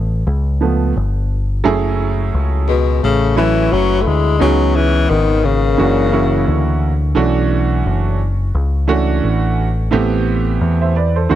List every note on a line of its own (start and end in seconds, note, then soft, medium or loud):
0.00 0.23 A1 medium
0.27 0.92 C#2 loud
0.61 0.92 F3 medium
0.61 0.92 A3 soft
0.61 0.92 B3 medium
0.96 1.61 G1 medium
1.64 2.30 F#1 medium
1.64 2.66 F#3 medium
1.64 2.66 A3 medium
1.64 2.66 C#4 medium
1.64 2.66 E4 medium
1.64 2.67 G#4 loud
2.34 2.99 C#2 medium
2.68 3.00 B2 medium
2.68 3.00 G#3 medium
3.02 3.68 A1 loud
3.02 3.35 C#3 medium
3.02 3.34 A3 medium
3.36 3.74 E3 loud
3.36 4.14 F#3 medium
3.36 4.14 A3 medium
3.36 3.71 C#4 medium
3.36 4.14 C#4 medium
3.36 4.15 E4 medium
3.36 4.15 B4 medium
3.71 4.05 F#1 medium
3.71 4.03 F#3 loud
3.71 4.01 C#4 medium
3.99 4.09 A3 medium
3.99 4.06 F#4 medium
4.05 4.39 D2 medium
4.05 4.41 G#3 medium
4.05 4.38 E4 medium
4.39 5.06 C#2 medium
4.39 5.42 C#3 medium
4.39 4.78 F#3 medium
4.39 5.42 B3 medium
4.39 5.42 C#4 medium
4.39 4.76 D#4 medium
4.39 5.43 D#4 medium
4.39 5.43 G#4 medium
4.74 5.12 E3 loud
4.74 5.10 C#4 medium
5.08 5.75 G#1 loud
5.08 5.46 D#3 loud
5.08 5.45 B3 medium
5.43 6.82 C#3 medium
5.43 6.81 A#3 medium
5.77 6.44 F#1 loud
5.77 6.07 E3 medium
5.77 6.07 A#3 medium
5.77 6.07 C#4 medium
5.77 6.08 D4 medium
5.77 6.08 F#4 medium
6.12 6.90 E3 medium
6.12 6.90 A#3 medium
6.12 6.90 C#4 medium
6.12 6.90 E4 medium
6.12 6.91 F#4 medium
6.48 7.13 D2 medium
7.15 7.82 B1 loud
7.15 8.17 E3 loud
7.15 8.18 A3 medium
7.15 8.18 C#4 medium
7.15 8.18 D4 medium
7.15 8.18 F#4 medium
7.86 8.51 F#1 medium
8.55 9.20 C#2 loud
8.88 9.66 E3 medium
8.88 9.66 A3 medium
8.88 9.66 C#4 medium
8.88 9.66 D4 medium
8.88 9.66 F#4 loud
9.24 9.89 A1 medium
9.91 10.58 A1 medium
9.91 10.93 E3 medium
9.91 10.94 A3 medium
9.91 10.94 B3 medium
9.91 10.94 C4 medium
9.91 10.94 G4 loud
10.61 11.27 E2 loud
10.81 10.95 C5 medium
10.81 10.95 E5 medium
10.96 11.16 B4 medium
10.96 11.15 D5 medium
11.16 11.35 A4 medium
11.16 11.35 C5 medium
11.29 11.35 D2 loud
11.29 11.35 E3 medium
11.29 11.35 A3 medium
11.29 11.35 C4 medium
11.29 11.35 D4 medium
11.29 11.35 F#4 medium